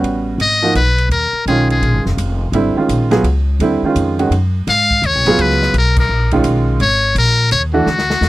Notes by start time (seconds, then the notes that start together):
Already playing: G3 B3 C#4 F#4
0.03 A1, ride
0.38 G#1 D#5, ride
0.62 F3 A#3 D#4 F#4
0.75 B1 B4, hi-hat pedal, ride
0.98 ride
1.09 D#2 A#4, ride
1.33 muted upright bass stroke
1.46 B1 D#3 G#3 C#4 F4 G#4, ride
1.70 G#4, ride
1.81 A#1, ride
1.93 G#1
2.06 F1, snare
2.17 F1, hi-hat pedal, ride
2.52 G#1 D3 G3 C4 E4, ride
2.75 D#3 G#3 C#4 F4, muted upright bass stroke
2.89 A#1, hi-hat pedal, ride
3.11 F#3 B3 F4 G#4, snare, ride
3.23 C#2, ride
3.60 D#2 D3 G3 C4 E4, ride
3.82 D#3 G#3 C#4 F4, muted upright bass stroke
3.95 F2, hi-hat pedal, ride
4.19 D#3 G#3 C#4 F#4, ride
4.30 F#2, ride
4.67 G#2 F5, snare, ride
4.91 kick
5.02 D#2 C#5, hi-hat pedal, ride
5.15 B1
5.26 G#1 F#3 B3 F4 G#4, ride
5.38 C#2 B4, ride
5.51 snare
5.62 snare
5.74 B1, ride
5.78 A#4
5.97 A#4, kick, crash
6.09 A#1
6.31 D#3 G#3 C#4 F4, kick, ride
6.44 B1, hi-hat pedal, ride
6.80 G#1 C#5, ride
7.15 A#1 A#4, hi-hat pedal, ride
7.51 D#2 C#5, ride
7.73 E3 A3 D4 F#4
7.86 D2, snare
7.99 snare
8.10 snare
8.21 E2, snare, hi-hat pedal